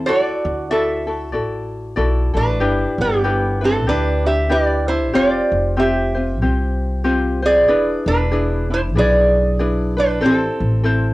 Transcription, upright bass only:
0.07 0.31 D2 medium
0.45 1.34 D2 medium
1.34 1.97 A1 medium
1.97 2.31 B1 medium
2.35 2.60 A1 medium
2.60 2.85 G1 loud
2.98 3.87 G1 medium
3.87 5.14 D2 medium
5.14 5.38 F1 loud
5.52 6.41 F1 medium
6.41 7.68 C2 medium
7.68 7.93 E1 medium
8.06 8.95 E1 medium
8.95 10.22 B1 medium
10.22 10.47 A1 medium
10.60 11.14 A1 medium

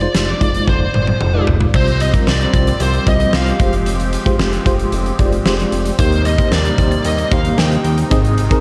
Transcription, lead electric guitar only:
0.00 0.64 D5 medium
0.69 1.44 C5 medium
1.76 2.02 C5 medium
2.02 2.09 D#5 medium
2.29 2.82 D5 medium
2.82 3.06 C5 medium
3.09 3.35 D#5 medium
3.35 3.71 F5 medium
6.00 6.26 C5 medium
6.26 6.52 D#5 medium
6.53 7.05 D5 medium
7.06 7.30 D#5 loud
7.32 7.59 F5 medium
7.59 7.96 G5 medium

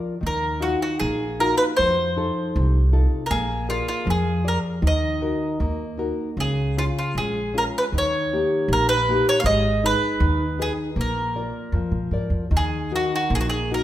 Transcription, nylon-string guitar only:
0.00 0.20 F3 medium
0.00 0.14 F4 soft
0.00 0.15 A#4 soft
0.00 0.15 D5 soft
0.21 0.98 D#3 medium
0.60 1.24 D#4 soft
0.60 1.24 F4 soft
0.60 1.24 F#4 soft
1.01 1.76 A#3 medium
1.40 1.71 D#4 soft
1.40 1.71 F4 soft
1.40 1.71 F#4 soft
1.78 2.53 F3 medium
2.16 2.78 D#4 soft
2.16 2.78 F4 soft
2.16 2.78 A4 soft
2.57 3.30 C3 medium
2.93 3.24 D#4 soft
2.93 3.23 F4 soft
2.93 3.23 A4 medium
3.31 4.05 A#3 medium
3.69 4.29 G#4 soft
3.69 4.29 A#4 soft
3.69 4.30 D5 soft
4.05 4.80 F3 medium
4.44 4.75 G#4 soft
4.44 4.75 A#4 soft
4.44 4.75 D5 soft
4.82 5.57 D#3 medium
5.21 5.83 D#4 soft
5.21 5.83 F#4 soft
5.21 5.84 A#4 soft
5.61 6.36 A#3 medium
5.98 6.29 D#4 soft
5.98 6.30 F#4 soft
5.98 6.30 A#4 soft
6.38 7.14 C#3 medium
6.77 7.39 C#4 soft
6.77 7.40 F4 soft
6.77 7.40 G#4 soft
7.18 7.92 G#3 medium
7.54 7.85 C#4 soft
7.54 7.86 F4 soft
7.54 7.86 G#4 soft
7.95 8.68 D#3 medium
8.33 8.93 A#3 soft
8.33 8.94 D#4 soft
8.33 8.94 G4 soft
8.71 9.43 A#2 medium
9.09 9.38 A#3 soft
9.09 9.38 D#4 soft
9.09 9.39 G4 soft
9.46 10.18 G#3 medium
9.84 10.44 D#4 soft
9.84 10.44 G#4 soft
9.84 10.44 B4 medium
10.21 10.94 D#3 medium
10.59 10.89 D#4 soft
10.59 10.89 G#4 soft
10.59 10.90 B4 soft
10.97 11.71 A#3 medium
11.36 11.97 F4 soft
11.36 11.97 A#4 soft
11.36 11.98 D5 soft
11.75 12.50 F3 medium
12.12 12.44 F4 soft
12.12 12.44 A#4 soft
12.12 12.45 D5 soft
12.51 13.28 D#3 medium
12.91 13.55 D#4 soft
12.91 13.55 F#4 soft
12.91 13.55 A#4 soft
13.30 13.83 A#3 medium
13.71 13.83 D#4 soft
13.71 13.83 F#4 soft
13.71 13.83 A#4 medium

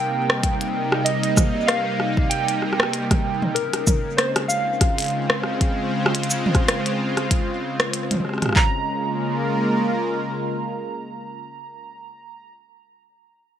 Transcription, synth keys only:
0.00 1.09 G5 loud
1.05 1.70 D#5 loud
1.67 2.32 F5 loud
2.30 3.59 G5 loud
3.55 4.20 A#4 medium
4.17 4.31 C5 medium
4.48 7.89 F5 medium
8.56 12.52 A#5 medium

